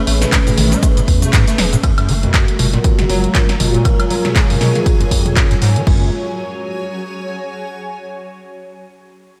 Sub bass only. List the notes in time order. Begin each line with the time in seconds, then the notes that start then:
0.07 A1
0.57 A1
1.08 E2
1.58 E1
2.09 F#1
2.59 F#1
3.10 F#1
3.60 F#1
5.87 F#1